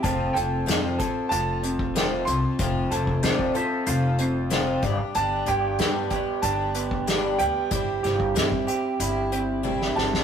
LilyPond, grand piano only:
\new Staff \with { instrumentName = "Grand piano" } { \time 4/4 \key f \lydian \tempo 4 = 94 a''8 g''4. a''4. c'''8~ | c'''4. r2 r8 | a''8 g''4. a''4 r8 g''8~ | g''2~ g''8 r4 a''8 | }